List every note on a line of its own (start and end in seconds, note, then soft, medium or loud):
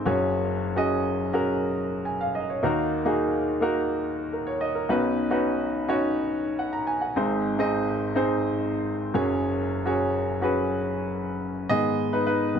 0.05 2.29 F#1 medium
0.05 2.30 F#2 medium
0.05 0.73 C#4 medium
0.05 0.73 F#4 medium
0.05 0.74 G#4 medium
0.05 0.74 C#5 medium
0.76 1.31 C#4 medium
0.76 1.31 F#4 medium
0.76 1.31 G#4 medium
0.76 1.31 D#5 medium
1.33 2.41 C#4 medium
1.33 2.41 F#4 medium
1.33 2.41 G#4 medium
1.33 2.42 A#4 medium
2.05 2.19 G#5 medium
2.21 2.34 F5 medium
2.35 2.48 D#5 medium
2.50 2.76 C#5 soft
2.63 4.86 D#2 medium
2.63 4.86 D#3 medium
2.63 3.03 A#3 medium
2.63 3.03 D#4 medium
2.63 3.03 F#4 medium
2.63 3.03 A#4 medium
3.05 3.59 A#3 medium
3.05 3.59 D#4 medium
3.05 3.59 F#4 medium
3.05 3.59 G#4 medium
3.61 4.68 A#3 medium
3.61 4.69 D#4 medium
3.61 4.69 F#4 medium
3.61 4.32 A#4 medium
4.33 4.46 A#4 soft
4.47 4.60 C#5 medium
4.61 4.74 D#5 medium
4.75 5.02 A#4 soft
4.89 7.12 B1 medium
4.89 7.12 B2 medium
4.89 5.29 C#4 medium
4.89 5.29 D#4 medium
4.89 5.29 F#4 medium
4.89 5.30 B4 medium
5.30 5.85 C#4 medium
5.30 5.85 D#4 medium
5.30 5.85 F#4 medium
5.30 5.86 B4 medium
5.88 6.96 C#4 medium
5.88 6.96 D#4 medium
5.88 6.96 F#4 medium
5.88 6.96 C#5 medium
6.59 6.73 F#5 medium
6.73 6.87 A#5 medium
6.87 7.01 G#5 medium
7.01 7.29 F#5 soft
7.16 9.11 G#1 medium
7.16 9.11 G#2 medium
7.16 7.56 C4 medium
7.16 7.57 D#4 medium
7.16 7.57 G#4 medium
7.16 7.57 C5 medium
7.59 8.12 C4 medium
7.59 8.12 D#4 medium
7.59 8.12 G#4 medium
7.59 8.13 D#5 medium
8.15 9.15 C4 medium
8.15 9.15 D#4 medium
8.15 9.13 G#4 medium
8.15 9.15 C5 medium
9.14 11.37 F#1 medium
9.14 11.37 F#2 medium
9.14 9.81 C#4 medium
9.14 9.81 F#4 medium
9.14 9.82 G#4 medium
9.14 9.82 C#5 medium
9.85 10.39 C#4 medium
9.85 10.39 F#4 medium
9.85 10.39 G#4 medium
9.85 10.40 C#5 medium
10.42 11.49 C#4 medium
10.42 11.49 F#4 medium
10.42 11.49 G#4 medium
10.42 11.50 B4 medium
11.69 12.07 G#2 soft
11.69 12.07 D#3 soft
11.69 12.08 B3 medium
11.69 12.09 G#4 medium
11.69 12.09 D#5 medium
12.13 12.25 D#4 medium
12.13 12.25 B4 medium
12.27 12.60 D#4 medium
12.27 12.60 B4 medium
12.54 12.60 G#2 soft
12.54 12.60 D#3 soft
12.54 12.60 B3 soft